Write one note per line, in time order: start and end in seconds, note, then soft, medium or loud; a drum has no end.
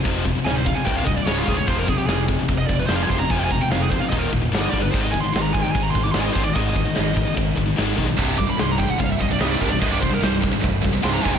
0.04 0.30 F1 medium
0.04 0.24 F2 medium
0.04 0.24 C3 medium
0.04 0.24 F3 medium
0.04 kick loud
0.04 crash medium
0.25 0.34 F2 medium
0.25 0.34 C3 medium
0.25 kick medium
0.35 0.44 F2 medium
0.35 0.44 C3 medium
0.45 0.71 D1 medium
0.45 0.64 F2 medium
0.45 0.64 C3 medium
0.45 0.55 G#5 loud
0.45 snare loud
0.45 crash medium
0.56 0.66 C5 medium
0.66 0.75 F2 medium
0.66 0.75 C3 medium
0.66 0.76 F5 medium
0.66 kick medium
0.75 0.84 F2 medium
0.75 0.84 C3 medium
0.75 0.85 G#5 loud
0.84 0.99 C1 medium
0.84 1.05 C2 loud
0.84 1.04 G2 loud
0.84 1.05 C3 loud
0.84 0.96 G5 loud
0.84 kick loud
0.84 crash medium
0.96 1.05 F5 medium
1.05 1.19 D1 medium
1.05 1.16 C2 medium
1.05 1.15 G2 medium
1.05 1.16 D#5 medium
1.05 kick medium
1.16 1.26 C2 medium
1.16 1.27 G2 medium
1.16 1.26 D5 medium
1.26 1.39 C#1 medium
1.26 1.45 C#2 medium
1.26 1.45 G#2 medium
1.26 1.46 C#3 loud
1.26 1.37 C#5 medium
1.26 snare medium
1.26 crash medium
1.38 1.47 F4 medium
1.46 1.60 D#1 medium
1.46 1.56 C#2 loud
1.46 1.56 G#2 medium
1.46 1.56 C#3 loud
1.46 1.58 G#4 medium
1.46 kick medium
1.57 1.66 C#2 medium
1.57 1.66 G#2 medium
1.57 1.67 C#5 loud
1.67 1.93 F1 medium
1.67 1.86 F2 medium
1.67 1.86 C3 medium
1.67 1.87 F3 medium
1.67 1.78 C5 medium
1.67 kick loud
1.67 crash medium
1.78 1.88 A#4 medium
1.87 1.98 F2 medium
1.87 1.97 C3 medium
1.87 1.98 G#4 loud
1.87 kick medium
1.98 2.07 F2 medium
1.98 2.08 C3 medium
1.98 2.06 G4 medium
2.05 2.32 F1 medium
2.05 2.27 F2 medium
2.05 2.27 C3 medium
2.05 2.19 G#4 loud
2.05 snare loud
2.05 crash medium
2.28 2.38 F2 medium
2.28 2.38 C3 medium
2.28 kick loud
2.39 2.47 F2 medium
2.39 2.47 C3 medium
2.48 2.62 F1 medium
2.48 2.67 F2 medium
2.48 2.67 C3 medium
2.48 kick loud
2.48 crash medium
2.58 2.67 D#5 medium
2.67 2.82 F1 medium
2.67 2.78 F2 medium
2.67 2.78 C3 medium
2.67 2.79 D5 medium
2.67 kick medium
2.79 2.87 F2 medium
2.79 2.88 C3 medium
2.79 2.86 B4 medium
2.87 3.02 F1 medium
2.87 3.08 F2 medium
2.87 3.09 C3 medium
2.87 3.09 F3 loud
2.87 2.95 C5 medium
2.87 snare loud
2.87 crash medium
2.96 3.03 F5 medium
3.03 3.09 G#5 medium
3.09 3.23 F1 medium
3.09 3.19 F2 medium
3.09 3.19 C3 loud
3.09 3.19 F3 loud
3.09 3.19 C6 loud
3.09 kick medium
3.20 3.29 F2 medium
3.20 3.30 C3 medium
3.20 3.30 A#5 loud
3.30 3.55 F1 loud
3.30 3.49 F2 medium
3.30 3.49 C3 medium
3.30 3.50 F3 medium
3.30 3.39 G#5 medium
3.30 kick loud
3.30 crash medium
3.39 3.44 G5 medium
3.44 3.51 G#5 medium
3.51 3.60 F2 medium
3.51 3.60 C3 loud
3.51 3.61 A#5 loud
3.51 kick medium
3.61 3.70 F2 medium
3.61 3.71 C3 medium
3.61 3.71 G5 medium
3.69 3.95 F1 medium
3.69 3.89 F2 medium
3.69 3.89 C3 medium
3.69 3.81 F5 medium
3.69 snare loud
3.69 crash medium
3.82 3.90 G#4 medium
3.90 4.01 F2 medium
3.90 4.00 C3 medium
3.90 4.01 C5 medium
3.90 kick medium
4.00 4.11 F2 medium
4.00 4.11 C3 medium
4.00 4.09 F5 loud
4.10 4.25 D#1 medium
4.10 4.30 D#2 loud
4.10 4.30 A#2 loud
4.10 4.31 D#3 loud
4.10 4.20 D#5 medium
4.10 kick loud
4.10 crash medium
4.19 4.26 A#4 medium
4.31 4.50 D#1 loud
4.31 4.40 D#2 medium
4.31 4.40 A#2 medium
4.31 kick medium
4.41 4.51 D#2 medium
4.41 4.52 A#2 medium
4.50 4.64 G1 loud
4.50 4.71 G2 medium
4.50 4.71 D3 medium
4.50 4.72 G3 medium
4.50 crash medium
4.54 snare loud
4.61 4.69 D#5 loud
4.70 4.86 G1 loud
4.70 4.81 G2 loud
4.70 4.81 D3 loud
4.70 4.82 G3 loud
4.70 4.81 D5 loud
4.70 kick medium
4.81 4.92 G2 medium
4.81 4.92 D3 medium
4.81 4.92 B4 medium
4.92 5.19 G#1 medium
4.92 5.11 G#2 medium
4.92 5.11 D#3 medium
4.92 5.12 G#3 loud
4.92 5.02 C5 medium
4.92 kick loud
4.92 crash medium
5.01 5.12 D#5 medium
5.11 5.22 G#2 medium
5.11 5.22 D#3 medium
5.11 5.22 G#5 medium
5.11 kick medium
5.20 5.31 G#2 medium
5.20 5.32 D#3 medium
5.20 5.32 C6 loud
5.32 5.59 G#1 medium
5.32 5.51 G#2 medium
5.32 5.51 D#3 medium
5.32 5.42 C6 medium
5.32 snare loud
5.32 crash medium
5.42 5.53 A#5 loud
5.53 5.64 G#2 medium
5.53 5.63 D#3 medium
5.53 5.62 G#5 loud
5.53 kick medium
5.62 5.74 G#2 medium
5.62 5.74 D#3 medium
5.62 5.71 G5 medium
5.71 5.87 G#1 medium
5.71 5.82 G#5 medium
5.71 kick loud
5.71 crash medium
5.76 5.93 G#2 medium
5.76 5.93 D#3 loud
5.83 5.90 A#5 medium
5.91 6.03 C6 loud
5.95 6.08 G#1 loud
5.95 6.04 G#2 medium
5.95 6.04 D#3 medium
5.95 kick medium
6.03 6.14 G#2 medium
6.03 6.14 D#3 loud
6.03 6.11 D6 loud
6.12 6.28 G#1 medium
6.12 6.34 G#2 medium
6.12 6.34 D#3 medium
6.12 6.20 C6 medium
6.12 snare loud
6.12 crash medium
6.16 6.34 G#3 medium
6.16 6.27 G#5 medium
6.24 6.33 D#5 loud
6.33 6.48 G#1 medium
6.33 6.44 G#2 loud
6.33 6.44 D#3 loud
6.33 6.44 G#3 loud
6.33 6.43 C5 medium
6.33 kick medium
6.43 6.54 G#2 medium
6.43 6.54 D#3 medium
6.43 6.54 D5 loud
6.54 6.81 G#1 medium
6.54 6.74 G#2 medium
6.54 6.74 D#3 medium
6.54 6.75 G#3 medium
6.54 7.32 D#5 medium
6.54 kick loud
6.54 crash medium
6.75 6.84 G#2 medium
6.75 6.84 D#3 medium
6.75 kick medium
6.85 6.94 G#2 medium
6.85 6.94 D#3 medium
6.95 7.23 G#1 medium
6.95 7.14 G#2 medium
6.95 7.13 D#3 medium
6.95 snare medium
6.95 crash medium
7.15 7.24 G#2 medium
7.15 7.24 D#3 medium
7.15 kick medium
7.25 7.33 G#2 medium
7.25 7.34 D#3 medium
7.34 7.50 G#1 loud
7.34 7.54 G#2 medium
7.34 7.54 D#3 loud
7.34 kick loud
7.34 crash medium
7.56 7.70 G#1 medium
7.56 7.65 G#2 medium
7.56 7.64 D#3 medium
7.56 kick medium
7.66 7.75 G#2 medium
7.66 7.75 D#3 medium
7.76 7.91 G#1 medium
7.76 7.96 G#2 medium
7.76 7.96 D#3 medium
7.76 7.97 G#3 medium
7.76 snare loud
7.76 crash medium
7.97 8.11 B1 medium
7.97 8.06 G#2 medium
7.97 8.06 D#3 loud
7.97 8.07 G#3 loud
7.97 kick medium
8.07 8.16 G#2 medium
8.07 8.17 D#3 medium
8.17 8.44 C1 loud
8.17 8.37 C2 medium
8.17 8.36 G2 medium
8.17 8.37 C3 loud
8.17 kick loud
8.17 crash medium
8.37 8.48 C2 medium
8.37 8.47 G2 medium
8.37 8.48 D6 loud
8.37 kick medium
8.48 8.56 C2 medium
8.48 8.57 G2 medium
8.48 8.59 B5 medium
8.58 8.85 C1 medium
8.58 8.77 C2 medium
8.58 8.77 G2 medium
8.58 8.71 C6 loud
8.58 snare loud
8.58 crash medium
8.71 8.80 A#5 loud
8.78 8.88 C2 medium
8.78 8.87 G2 medium
8.78 8.90 G5 loud
8.78 kick medium
8.88 8.97 C2 medium
8.88 8.98 G2 medium
8.88 8.99 F#5 loud
8.98 9.13 C1 medium
8.98 9.18 C2 medium
8.98 9.18 G2 medium
8.98 9.10 F5 medium
8.98 kick loud
8.98 crash medium
9.10 9.20 E5 loud
9.20 9.33 C1 medium
9.20 9.31 C2 medium
9.20 9.30 G2 medium
9.20 9.30 D#5 medium
9.20 kick medium
9.31 9.39 C2 medium
9.31 9.39 G2 medium
9.31 9.41 D5 medium
9.40 9.53 C1 medium
9.40 9.60 C2 medium
9.40 9.60 G2 medium
9.40 9.60 C3 medium
9.40 9.49 D#5 loud
9.40 snare loud
9.40 crash medium
9.49 9.60 D5 loud
9.61 9.74 C1 medium
9.61 9.70 C2 loud
9.61 9.69 G2 loud
9.61 9.70 C3 medium
9.61 9.71 A#4 medium
9.61 kick medium
9.70 9.80 C2 medium
9.70 9.80 G2 medium
9.70 9.80 D5 medium
9.80 10.07 C1 loud
9.80 10.00 C2 medium
9.80 10.00 G2 medium
9.80 10.01 C3 medium
9.80 9.91 D#5 medium
9.80 kick loud
9.80 crash medium
9.92 10.00 D5 medium
10.01 10.10 C2 medium
10.01 10.09 G2 medium
10.01 10.11 C5 medium
10.01 kick medium
10.10 10.20 C2 medium
10.10 10.20 G2 medium
10.10 10.23 A#4 loud
10.21 10.48 C1 loud
10.21 10.40 C2 medium
10.21 10.40 G2 medium
10.21 10.35 C5 medium
10.21 snare loud
10.21 crash medium
10.42 10.51 C2 medium
10.42 10.50 G2 medium
10.42 kick medium
10.51 10.59 C2 medium
10.51 10.60 G2 medium
10.60 10.77 C1 medium
10.60 10.80 C2 medium
10.60 10.80 G2 loud
10.60 kick loud
10.60 crash medium
10.81 10.97 C1 loud
10.81 10.91 C2 medium
10.81 10.90 G2 medium
10.81 kick loud
10.91 11.01 C2 medium
10.91 11.01 G2 medium
11.02 11.16 C1 loud
11.02 11.22 C2 medium
11.02 11.22 G2 medium
11.02 11.22 C3 medium
11.02 11.13 C6 loud
11.02 snare loud
11.02 crash medium
11.14 11.24 A#5 loud
11.23 11.38 E1 medium
11.23 11.33 C2 loud
11.23 11.32 G2 loud
11.23 11.33 C3 loud
11.23 11.34 G#5 medium
11.23 kick medium
11.33 11.39 C2 medium
11.33 11.39 G2 medium
11.33 11.39 G5 medium